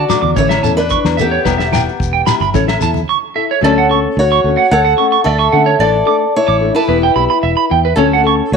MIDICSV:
0, 0, Header, 1, 8, 480
1, 0, Start_track
1, 0, Key_signature, 2, "major"
1, 0, Tempo, 543478
1, 1287, Time_signature, 4, 2, 24, 8
1, 7568, End_track
2, 0, Start_track
2, 0, Title_t, "Clean electric guitar"
2, 0, Program_c, 0, 27
2, 87, Note_on_c, 0, 86, 81
2, 156, Note_off_c, 0, 86, 0
2, 193, Note_on_c, 0, 86, 68
2, 266, Note_off_c, 0, 86, 0
2, 320, Note_on_c, 0, 73, 64
2, 392, Note_off_c, 0, 73, 0
2, 434, Note_on_c, 0, 76, 79
2, 506, Note_off_c, 0, 76, 0
2, 557, Note_on_c, 0, 81, 62
2, 630, Note_off_c, 0, 81, 0
2, 800, Note_on_c, 0, 85, 79
2, 871, Note_off_c, 0, 85, 0
2, 1035, Note_on_c, 0, 76, 67
2, 1109, Note_off_c, 0, 76, 0
2, 1160, Note_on_c, 0, 73, 75
2, 1231, Note_off_c, 0, 73, 0
2, 1280, Note_on_c, 0, 71, 68
2, 1352, Note_off_c, 0, 71, 0
2, 1396, Note_on_c, 0, 76, 66
2, 1468, Note_off_c, 0, 76, 0
2, 1524, Note_on_c, 0, 79, 64
2, 1595, Note_off_c, 0, 79, 0
2, 1881, Note_on_c, 0, 79, 74
2, 1952, Note_off_c, 0, 79, 0
2, 2000, Note_on_c, 0, 83, 77
2, 2072, Note_off_c, 0, 83, 0
2, 2132, Note_on_c, 0, 83, 67
2, 2199, Note_off_c, 0, 83, 0
2, 2255, Note_on_c, 0, 73, 58
2, 2323, Note_off_c, 0, 73, 0
2, 2369, Note_on_c, 0, 76, 77
2, 2437, Note_off_c, 0, 76, 0
2, 2495, Note_on_c, 0, 81, 67
2, 2562, Note_off_c, 0, 81, 0
2, 2731, Note_on_c, 0, 85, 81
2, 2800, Note_off_c, 0, 85, 0
2, 2966, Note_on_c, 0, 76, 66
2, 3036, Note_off_c, 0, 76, 0
2, 3100, Note_on_c, 0, 73, 71
2, 3165, Note_off_c, 0, 73, 0
2, 3215, Note_on_c, 0, 74, 77
2, 3283, Note_off_c, 0, 74, 0
2, 3338, Note_on_c, 0, 78, 71
2, 3404, Note_off_c, 0, 78, 0
2, 3453, Note_on_c, 0, 85, 67
2, 3521, Note_off_c, 0, 85, 0
2, 3813, Note_on_c, 0, 85, 79
2, 3880, Note_off_c, 0, 85, 0
2, 4039, Note_on_c, 0, 78, 69
2, 4110, Note_off_c, 0, 78, 0
2, 4168, Note_on_c, 0, 73, 64
2, 4238, Note_off_c, 0, 73, 0
2, 4281, Note_on_c, 0, 78, 84
2, 4351, Note_off_c, 0, 78, 0
2, 4399, Note_on_c, 0, 85, 71
2, 4471, Note_off_c, 0, 85, 0
2, 4524, Note_on_c, 0, 85, 77
2, 4593, Note_off_c, 0, 85, 0
2, 4648, Note_on_c, 0, 74, 81
2, 4717, Note_off_c, 0, 74, 0
2, 4762, Note_on_c, 0, 85, 70
2, 4832, Note_off_c, 0, 85, 0
2, 4879, Note_on_c, 0, 78, 63
2, 4951, Note_off_c, 0, 78, 0
2, 4999, Note_on_c, 0, 73, 82
2, 5069, Note_off_c, 0, 73, 0
2, 5125, Note_on_c, 0, 74, 78
2, 5194, Note_off_c, 0, 74, 0
2, 5360, Note_on_c, 0, 86, 71
2, 5431, Note_off_c, 0, 86, 0
2, 5722, Note_on_c, 0, 86, 80
2, 5791, Note_off_c, 0, 86, 0
2, 5971, Note_on_c, 0, 81, 69
2, 6037, Note_off_c, 0, 81, 0
2, 6081, Note_on_c, 0, 71, 69
2, 6151, Note_off_c, 0, 71, 0
2, 6211, Note_on_c, 0, 79, 86
2, 6277, Note_off_c, 0, 79, 0
2, 6321, Note_on_c, 0, 83, 70
2, 6391, Note_off_c, 0, 83, 0
2, 6447, Note_on_c, 0, 83, 80
2, 6515, Note_off_c, 0, 83, 0
2, 6562, Note_on_c, 0, 76, 78
2, 6632, Note_off_c, 0, 76, 0
2, 6684, Note_on_c, 0, 83, 74
2, 6752, Note_off_c, 0, 83, 0
2, 6812, Note_on_c, 0, 79, 70
2, 6879, Note_off_c, 0, 79, 0
2, 6931, Note_on_c, 0, 71, 78
2, 6997, Note_off_c, 0, 71, 0
2, 7049, Note_on_c, 0, 73, 78
2, 7117, Note_off_c, 0, 73, 0
2, 7184, Note_on_c, 0, 78, 76
2, 7246, Note_off_c, 0, 78, 0
2, 7301, Note_on_c, 0, 85, 77
2, 7365, Note_off_c, 0, 85, 0
2, 7568, End_track
3, 0, Start_track
3, 0, Title_t, "Steel-string acoustic guitar"
3, 0, Program_c, 1, 25
3, 0, Note_on_c, 1, 66, 62
3, 0, Note_on_c, 1, 74, 76
3, 293, Note_off_c, 1, 74, 0
3, 294, Note_off_c, 1, 66, 0
3, 337, Note_on_c, 1, 73, 81
3, 343, Note_on_c, 1, 64, 60
3, 670, Note_off_c, 1, 64, 0
3, 675, Note_off_c, 1, 73, 0
3, 678, Note_on_c, 1, 71, 91
3, 687, Note_on_c, 1, 62, 72
3, 1021, Note_off_c, 1, 62, 0
3, 1053, Note_off_c, 1, 71, 0
3, 1069, Note_on_c, 1, 67, 65
3, 1070, Note_on_c, 1, 59, 49
3, 1982, Note_off_c, 1, 59, 0
3, 1984, Note_off_c, 1, 67, 0
3, 3218, Note_on_c, 1, 69, 88
3, 3223, Note_on_c, 1, 61, 66
3, 3662, Note_off_c, 1, 61, 0
3, 3700, Note_on_c, 1, 73, 87
3, 3703, Note_off_c, 1, 69, 0
3, 3706, Note_on_c, 1, 66, 66
3, 4143, Note_off_c, 1, 66, 0
3, 4163, Note_on_c, 1, 78, 95
3, 4175, Note_on_c, 1, 69, 70
3, 4187, Note_off_c, 1, 73, 0
3, 4617, Note_off_c, 1, 69, 0
3, 4629, Note_on_c, 1, 69, 78
3, 4632, Note_off_c, 1, 78, 0
3, 4635, Note_on_c, 1, 76, 78
3, 5084, Note_off_c, 1, 69, 0
3, 5084, Note_off_c, 1, 76, 0
3, 5122, Note_on_c, 1, 74, 89
3, 5131, Note_on_c, 1, 69, 68
3, 5574, Note_off_c, 1, 69, 0
3, 5617, Note_off_c, 1, 74, 0
3, 5621, Note_on_c, 1, 64, 58
3, 5621, Note_on_c, 1, 73, 86
3, 5948, Note_off_c, 1, 64, 0
3, 5949, Note_off_c, 1, 73, 0
3, 5958, Note_on_c, 1, 64, 58
3, 5968, Note_on_c, 1, 71, 79
3, 6764, Note_off_c, 1, 64, 0
3, 6768, Note_off_c, 1, 71, 0
3, 7027, Note_on_c, 1, 69, 81
3, 7036, Note_on_c, 1, 61, 71
3, 7484, Note_off_c, 1, 61, 0
3, 7528, Note_off_c, 1, 69, 0
3, 7537, Note_on_c, 1, 73, 89
3, 7541, Note_on_c, 1, 66, 69
3, 7568, Note_off_c, 1, 66, 0
3, 7568, Note_off_c, 1, 73, 0
3, 7568, End_track
4, 0, Start_track
4, 0, Title_t, "Nylon-string guitar"
4, 0, Program_c, 2, 24
4, 75, Note_on_c, 2, 66, 54
4, 88, Note_on_c, 2, 62, 49
4, 94, Note_on_c, 2, 57, 41
4, 225, Note_off_c, 2, 66, 0
4, 232, Note_off_c, 2, 62, 0
4, 235, Note_off_c, 2, 57, 0
4, 320, Note_on_c, 2, 52, 74
4, 326, Note_on_c, 2, 57, 66
4, 330, Note_on_c, 2, 61, 72
4, 337, Note_on_c, 2, 69, 71
4, 468, Note_off_c, 2, 52, 0
4, 471, Note_off_c, 2, 57, 0
4, 473, Note_off_c, 2, 61, 0
4, 477, Note_off_c, 2, 69, 0
4, 564, Note_on_c, 2, 69, 53
4, 574, Note_on_c, 2, 61, 47
4, 578, Note_on_c, 2, 57, 36
4, 710, Note_off_c, 2, 69, 0
4, 715, Note_off_c, 2, 61, 0
4, 717, Note_off_c, 2, 57, 0
4, 1051, Note_on_c, 2, 69, 55
4, 1060, Note_on_c, 2, 61, 49
4, 1071, Note_on_c, 2, 57, 39
4, 1194, Note_off_c, 2, 69, 0
4, 1199, Note_off_c, 2, 61, 0
4, 1204, Note_off_c, 2, 57, 0
4, 1277, Note_on_c, 2, 55, 68
4, 1294, Note_on_c, 2, 59, 76
4, 1295, Note_on_c, 2, 64, 81
4, 1301, Note_on_c, 2, 67, 80
4, 1427, Note_off_c, 2, 55, 0
4, 1436, Note_off_c, 2, 59, 0
4, 1436, Note_off_c, 2, 64, 0
4, 1439, Note_off_c, 2, 67, 0
4, 1519, Note_on_c, 2, 67, 45
4, 1529, Note_on_c, 2, 64, 45
4, 1538, Note_on_c, 2, 59, 39
4, 1668, Note_off_c, 2, 67, 0
4, 1673, Note_off_c, 2, 64, 0
4, 1678, Note_off_c, 2, 59, 0
4, 2005, Note_on_c, 2, 67, 53
4, 2010, Note_on_c, 2, 64, 45
4, 2018, Note_on_c, 2, 59, 43
4, 2151, Note_off_c, 2, 67, 0
4, 2154, Note_off_c, 2, 64, 0
4, 2158, Note_off_c, 2, 59, 0
4, 2240, Note_on_c, 2, 61, 75
4, 2242, Note_on_c, 2, 64, 83
4, 2249, Note_on_c, 2, 69, 83
4, 2389, Note_off_c, 2, 61, 0
4, 2390, Note_off_c, 2, 64, 0
4, 2393, Note_off_c, 2, 69, 0
4, 2476, Note_on_c, 2, 69, 53
4, 2500, Note_on_c, 2, 64, 47
4, 2627, Note_off_c, 2, 69, 0
4, 2639, Note_off_c, 2, 64, 0
4, 2962, Note_on_c, 2, 69, 58
4, 2979, Note_on_c, 2, 64, 44
4, 3110, Note_off_c, 2, 69, 0
4, 3118, Note_off_c, 2, 64, 0
4, 3190, Note_on_c, 2, 54, 81
4, 3200, Note_on_c, 2, 57, 72
4, 3204, Note_on_c, 2, 61, 82
4, 3212, Note_on_c, 2, 69, 87
4, 3344, Note_off_c, 2, 54, 0
4, 3349, Note_off_c, 2, 57, 0
4, 3351, Note_off_c, 2, 61, 0
4, 3354, Note_off_c, 2, 69, 0
4, 3444, Note_on_c, 2, 69, 54
4, 3464, Note_on_c, 2, 61, 49
4, 3473, Note_on_c, 2, 57, 43
4, 3590, Note_off_c, 2, 69, 0
4, 3601, Note_off_c, 2, 61, 0
4, 3605, Note_off_c, 2, 57, 0
4, 3931, Note_on_c, 2, 69, 51
4, 3945, Note_on_c, 2, 61, 52
4, 3955, Note_on_c, 2, 57, 45
4, 4074, Note_off_c, 2, 69, 0
4, 4081, Note_off_c, 2, 61, 0
4, 4086, Note_off_c, 2, 57, 0
4, 4395, Note_on_c, 2, 69, 53
4, 4408, Note_on_c, 2, 61, 49
4, 4419, Note_on_c, 2, 57, 42
4, 4545, Note_off_c, 2, 69, 0
4, 4552, Note_off_c, 2, 61, 0
4, 4557, Note_off_c, 2, 57, 0
4, 4885, Note_on_c, 2, 69, 55
4, 4889, Note_on_c, 2, 61, 43
4, 4897, Note_on_c, 2, 57, 46
4, 5030, Note_off_c, 2, 69, 0
4, 5032, Note_off_c, 2, 61, 0
4, 5036, Note_off_c, 2, 57, 0
4, 5116, Note_on_c, 2, 52, 78
4, 5131, Note_on_c, 2, 62, 87
4, 5136, Note_on_c, 2, 69, 79
4, 5265, Note_off_c, 2, 52, 0
4, 5273, Note_off_c, 2, 62, 0
4, 5275, Note_off_c, 2, 69, 0
4, 5352, Note_on_c, 2, 69, 55
4, 5364, Note_on_c, 2, 62, 46
4, 5368, Note_on_c, 2, 57, 47
4, 5503, Note_off_c, 2, 69, 0
4, 5509, Note_off_c, 2, 62, 0
4, 5511, Note_off_c, 2, 57, 0
4, 5835, Note_on_c, 2, 69, 52
4, 5846, Note_on_c, 2, 62, 44
4, 5864, Note_on_c, 2, 57, 45
4, 5984, Note_off_c, 2, 69, 0
4, 5990, Note_off_c, 2, 62, 0
4, 5998, Note_off_c, 2, 57, 0
4, 6070, Note_on_c, 2, 52, 82
4, 6081, Note_on_c, 2, 64, 79
4, 6083, Note_on_c, 2, 59, 73
4, 6089, Note_on_c, 2, 67, 75
4, 6221, Note_off_c, 2, 52, 0
4, 6227, Note_off_c, 2, 64, 0
4, 6228, Note_off_c, 2, 59, 0
4, 6231, Note_off_c, 2, 67, 0
4, 6322, Note_on_c, 2, 67, 51
4, 6331, Note_on_c, 2, 64, 54
4, 6345, Note_on_c, 2, 59, 42
4, 6467, Note_off_c, 2, 67, 0
4, 6472, Note_off_c, 2, 64, 0
4, 6479, Note_off_c, 2, 59, 0
4, 6801, Note_on_c, 2, 64, 57
4, 6814, Note_on_c, 2, 59, 51
4, 6946, Note_off_c, 2, 64, 0
4, 6953, Note_off_c, 2, 59, 0
4, 7038, Note_on_c, 2, 54, 78
4, 7050, Note_on_c, 2, 57, 82
4, 7051, Note_on_c, 2, 61, 84
4, 7053, Note_on_c, 2, 69, 87
4, 7185, Note_off_c, 2, 54, 0
4, 7191, Note_off_c, 2, 57, 0
4, 7191, Note_off_c, 2, 61, 0
4, 7192, Note_off_c, 2, 69, 0
4, 7272, Note_on_c, 2, 69, 56
4, 7289, Note_on_c, 2, 61, 52
4, 7299, Note_on_c, 2, 57, 39
4, 7422, Note_off_c, 2, 69, 0
4, 7430, Note_off_c, 2, 61, 0
4, 7435, Note_off_c, 2, 57, 0
4, 7568, End_track
5, 0, Start_track
5, 0, Title_t, "Fingered electric bass"
5, 0, Program_c, 3, 33
5, 197, Note_on_c, 3, 40, 79
5, 296, Note_off_c, 3, 40, 0
5, 322, Note_on_c, 3, 33, 106
5, 515, Note_off_c, 3, 33, 0
5, 554, Note_on_c, 3, 40, 69
5, 848, Note_off_c, 3, 40, 0
5, 923, Note_on_c, 3, 40, 77
5, 1212, Note_off_c, 3, 40, 0
5, 1280, Note_on_c, 3, 28, 87
5, 1666, Note_off_c, 3, 28, 0
5, 1765, Note_on_c, 3, 28, 85
5, 1957, Note_off_c, 3, 28, 0
5, 2122, Note_on_c, 3, 31, 88
5, 2219, Note_off_c, 3, 31, 0
5, 2240, Note_on_c, 3, 33, 94
5, 2435, Note_off_c, 3, 33, 0
5, 2481, Note_on_c, 3, 40, 72
5, 2675, Note_off_c, 3, 40, 0
5, 3202, Note_on_c, 3, 38, 92
5, 3587, Note_off_c, 3, 38, 0
5, 3681, Note_on_c, 3, 38, 89
5, 3875, Note_off_c, 3, 38, 0
5, 3922, Note_on_c, 3, 38, 81
5, 4021, Note_off_c, 3, 38, 0
5, 4165, Note_on_c, 3, 38, 103
5, 4357, Note_off_c, 3, 38, 0
5, 4644, Note_on_c, 3, 38, 105
5, 4836, Note_off_c, 3, 38, 0
5, 4885, Note_on_c, 3, 50, 90
5, 5076, Note_off_c, 3, 50, 0
5, 5115, Note_on_c, 3, 33, 89
5, 5311, Note_off_c, 3, 33, 0
5, 5725, Note_on_c, 3, 33, 89
5, 5916, Note_off_c, 3, 33, 0
5, 6080, Note_on_c, 3, 28, 95
5, 6272, Note_off_c, 3, 28, 0
5, 6321, Note_on_c, 3, 35, 70
5, 6418, Note_off_c, 3, 35, 0
5, 6564, Note_on_c, 3, 28, 87
5, 6660, Note_off_c, 3, 28, 0
5, 6811, Note_on_c, 3, 40, 79
5, 6999, Note_off_c, 3, 40, 0
5, 7038, Note_on_c, 3, 38, 92
5, 7422, Note_off_c, 3, 38, 0
5, 7526, Note_on_c, 3, 38, 89
5, 7568, Note_off_c, 3, 38, 0
5, 7568, End_track
6, 0, Start_track
6, 0, Title_t, "Muted nylon-string guitar strokes"
6, 5125, Note_on_c, 9, 29, 70
6, 5214, Note_off_c, 9, 29, 0
6, 7568, End_track
7, 0, Start_track
7, 0, Title_t, "Shekere"
7, 89, Note_on_c, 9, 82, 90
7, 177, Note_off_c, 9, 82, 0
7, 324, Note_on_c, 9, 82, 74
7, 412, Note_off_c, 9, 82, 0
7, 564, Note_on_c, 9, 82, 72
7, 653, Note_off_c, 9, 82, 0
7, 688, Note_on_c, 9, 82, 24
7, 776, Note_off_c, 9, 82, 0
7, 792, Note_on_c, 9, 82, 75
7, 881, Note_off_c, 9, 82, 0
7, 1046, Note_on_c, 9, 82, 78
7, 1134, Note_off_c, 9, 82, 0
7, 1294, Note_on_c, 9, 82, 65
7, 1382, Note_off_c, 9, 82, 0
7, 1537, Note_on_c, 9, 82, 83
7, 1625, Note_off_c, 9, 82, 0
7, 1666, Note_on_c, 9, 82, 24
7, 1754, Note_off_c, 9, 82, 0
7, 1784, Note_on_c, 9, 82, 68
7, 1872, Note_off_c, 9, 82, 0
7, 2007, Note_on_c, 9, 82, 83
7, 2095, Note_off_c, 9, 82, 0
7, 2129, Note_on_c, 9, 82, 26
7, 2217, Note_off_c, 9, 82, 0
7, 2247, Note_on_c, 9, 82, 69
7, 2335, Note_off_c, 9, 82, 0
7, 2486, Note_on_c, 9, 82, 77
7, 2574, Note_off_c, 9, 82, 0
7, 2614, Note_on_c, 9, 82, 25
7, 2703, Note_off_c, 9, 82, 0
7, 7568, End_track
8, 0, Start_track
8, 0, Title_t, "Drums"
8, 83, Note_on_c, 9, 64, 65
8, 85, Note_on_c, 9, 38, 63
8, 87, Note_on_c, 9, 68, 62
8, 172, Note_off_c, 9, 64, 0
8, 173, Note_off_c, 9, 38, 0
8, 175, Note_off_c, 9, 68, 0
8, 207, Note_on_c, 9, 63, 62
8, 296, Note_off_c, 9, 63, 0
8, 323, Note_on_c, 9, 36, 82
8, 331, Note_on_c, 9, 63, 58
8, 412, Note_off_c, 9, 36, 0
8, 419, Note_off_c, 9, 63, 0
8, 441, Note_on_c, 9, 38, 68
8, 447, Note_on_c, 9, 68, 65
8, 529, Note_off_c, 9, 38, 0
8, 535, Note_off_c, 9, 68, 0
8, 685, Note_on_c, 9, 38, 21
8, 774, Note_off_c, 9, 38, 0
8, 805, Note_on_c, 9, 36, 79
8, 894, Note_off_c, 9, 36, 0
8, 925, Note_on_c, 9, 38, 64
8, 932, Note_on_c, 9, 68, 57
8, 1014, Note_off_c, 9, 38, 0
8, 1020, Note_off_c, 9, 68, 0
8, 1056, Note_on_c, 9, 64, 61
8, 1145, Note_off_c, 9, 64, 0
8, 1284, Note_on_c, 9, 38, 65
8, 1285, Note_on_c, 9, 36, 75
8, 1291, Note_on_c, 9, 68, 61
8, 1372, Note_off_c, 9, 38, 0
8, 1373, Note_off_c, 9, 36, 0
8, 1379, Note_off_c, 9, 68, 0
8, 1409, Note_on_c, 9, 38, 59
8, 1498, Note_off_c, 9, 38, 0
8, 1525, Note_on_c, 9, 63, 53
8, 1530, Note_on_c, 9, 38, 64
8, 1530, Note_on_c, 9, 68, 61
8, 1613, Note_off_c, 9, 63, 0
8, 1618, Note_off_c, 9, 38, 0
8, 1618, Note_off_c, 9, 68, 0
8, 1766, Note_on_c, 9, 36, 73
8, 1855, Note_off_c, 9, 36, 0
8, 2003, Note_on_c, 9, 38, 65
8, 2005, Note_on_c, 9, 64, 59
8, 2008, Note_on_c, 9, 68, 65
8, 2091, Note_off_c, 9, 38, 0
8, 2093, Note_off_c, 9, 64, 0
8, 2097, Note_off_c, 9, 68, 0
8, 2122, Note_on_c, 9, 63, 58
8, 2210, Note_off_c, 9, 63, 0
8, 2243, Note_on_c, 9, 38, 26
8, 2247, Note_on_c, 9, 36, 75
8, 2251, Note_on_c, 9, 63, 59
8, 2251, Note_on_c, 9, 64, 62
8, 2331, Note_off_c, 9, 38, 0
8, 2335, Note_off_c, 9, 36, 0
8, 2339, Note_off_c, 9, 63, 0
8, 2339, Note_off_c, 9, 64, 0
8, 2367, Note_on_c, 9, 38, 62
8, 2379, Note_on_c, 9, 68, 63
8, 2455, Note_off_c, 9, 38, 0
8, 2467, Note_off_c, 9, 68, 0
8, 2481, Note_on_c, 9, 64, 64
8, 2569, Note_off_c, 9, 64, 0
8, 2598, Note_on_c, 9, 63, 63
8, 2687, Note_off_c, 9, 63, 0
8, 7568, End_track
0, 0, End_of_file